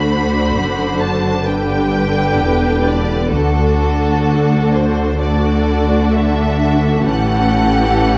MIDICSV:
0, 0, Header, 1, 6, 480
1, 0, Start_track
1, 0, Tempo, 924499
1, 1732, Time_signature, 4, 2, 24, 8
1, 4247, End_track
2, 0, Start_track
2, 0, Title_t, "Violin section"
2, 0, Program_c, 0, 48
2, 0, Note_on_c, 0, 83, 60
2, 515, Note_off_c, 0, 83, 0
2, 525, Note_on_c, 0, 81, 50
2, 764, Note_on_c, 0, 79, 56
2, 768, Note_off_c, 0, 81, 0
2, 1489, Note_off_c, 0, 79, 0
2, 1489, Note_on_c, 0, 74, 52
2, 1721, Note_on_c, 0, 69, 63
2, 1730, Note_off_c, 0, 74, 0
2, 2440, Note_off_c, 0, 69, 0
2, 2452, Note_on_c, 0, 72, 56
2, 2698, Note_off_c, 0, 72, 0
2, 2704, Note_on_c, 0, 74, 49
2, 3180, Note_off_c, 0, 74, 0
2, 3181, Note_on_c, 0, 76, 53
2, 3661, Note_off_c, 0, 76, 0
2, 3662, Note_on_c, 0, 78, 70
2, 4247, Note_off_c, 0, 78, 0
2, 4247, End_track
3, 0, Start_track
3, 0, Title_t, "Violin section"
3, 0, Program_c, 1, 48
3, 0, Note_on_c, 1, 66, 38
3, 0, Note_on_c, 1, 72, 40
3, 753, Note_off_c, 1, 72, 0
3, 754, Note_off_c, 1, 66, 0
3, 775, Note_on_c, 1, 71, 38
3, 776, Note_on_c, 1, 67, 36
3, 1733, Note_off_c, 1, 71, 0
3, 1734, Note_off_c, 1, 67, 0
3, 1734, Note_on_c, 1, 66, 46
3, 1734, Note_on_c, 1, 69, 40
3, 2684, Note_off_c, 1, 66, 0
3, 2696, Note_off_c, 1, 69, 0
3, 2702, Note_on_c, 1, 69, 39
3, 2703, Note_on_c, 1, 66, 43
3, 3640, Note_off_c, 1, 69, 0
3, 3641, Note_off_c, 1, 66, 0
3, 3657, Note_on_c, 1, 67, 48
3, 3660, Note_on_c, 1, 69, 47
3, 4247, Note_off_c, 1, 67, 0
3, 4247, Note_off_c, 1, 69, 0
3, 4247, End_track
4, 0, Start_track
4, 0, Title_t, "Viola section"
4, 0, Program_c, 2, 48
4, 0, Note_on_c, 2, 50, 42
4, 0, Note_on_c, 2, 62, 36
4, 751, Note_off_c, 2, 50, 0
4, 751, Note_off_c, 2, 62, 0
4, 767, Note_on_c, 2, 50, 43
4, 769, Note_on_c, 2, 62, 46
4, 1710, Note_off_c, 2, 50, 0
4, 1711, Note_off_c, 2, 62, 0
4, 1733, Note_on_c, 2, 62, 40
4, 1734, Note_on_c, 2, 50, 43
4, 2683, Note_off_c, 2, 50, 0
4, 2683, Note_off_c, 2, 62, 0
4, 2704, Note_on_c, 2, 50, 47
4, 2704, Note_on_c, 2, 62, 47
4, 3641, Note_off_c, 2, 50, 0
4, 3641, Note_off_c, 2, 62, 0
4, 3660, Note_on_c, 2, 52, 46
4, 3662, Note_on_c, 2, 61, 45
4, 4247, Note_off_c, 2, 52, 0
4, 4247, Note_off_c, 2, 61, 0
4, 4247, End_track
5, 0, Start_track
5, 0, Title_t, "Cello section"
5, 0, Program_c, 3, 48
5, 0, Note_on_c, 3, 38, 43
5, 289, Note_on_c, 3, 42, 41
5, 293, Note_off_c, 3, 38, 0
5, 770, Note_off_c, 3, 42, 0
5, 770, Note_on_c, 3, 43, 37
5, 1249, Note_on_c, 3, 40, 43
5, 1253, Note_off_c, 3, 43, 0
5, 1720, Note_off_c, 3, 40, 0
5, 1729, Note_on_c, 3, 38, 47
5, 3658, Note_off_c, 3, 38, 0
5, 3662, Note_on_c, 3, 45, 48
5, 4247, Note_off_c, 3, 45, 0
5, 4247, End_track
6, 0, Start_track
6, 0, Title_t, "Double bass section"
6, 0, Program_c, 4, 48
6, 0, Note_on_c, 4, 38, 37
6, 291, Note_on_c, 4, 30, 36
6, 294, Note_off_c, 4, 38, 0
6, 769, Note_on_c, 4, 31, 42
6, 771, Note_off_c, 4, 30, 0
6, 1253, Note_off_c, 4, 31, 0
6, 1255, Note_on_c, 4, 28, 42
6, 1723, Note_off_c, 4, 28, 0
6, 1733, Note_on_c, 4, 38, 42
6, 3660, Note_off_c, 4, 38, 0
6, 3663, Note_on_c, 4, 33, 48
6, 4247, Note_off_c, 4, 33, 0
6, 4247, End_track
0, 0, End_of_file